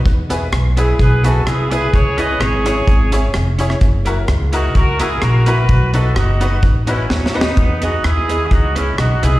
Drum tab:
HH |x-----x-----x-----x-----x-----x-----x-----x-----|x-----x-----x-----x-----x-----x-----x-----x-----|x-----x-----x-----x-----x-----x-----x-----x-----|x-----x-----x-----x-----x-----x-----------------|
SD |------------r-----------------------r-----------|------------r-----r-----------------r--------r--|------------r-----------------------r-----------|------------r-----------------------o---o---o---|
BD |o-----------------------o-----------------------|o-----------------------o-----------------------|o-----------------------o-----------------------|o-----------------------o-----------------------|

HH |x-----x-----x-----x-----x-----x-----x-----x-----|
SD |------------r-----------------------r-----------|
BD |o-----------------------o-----------------------|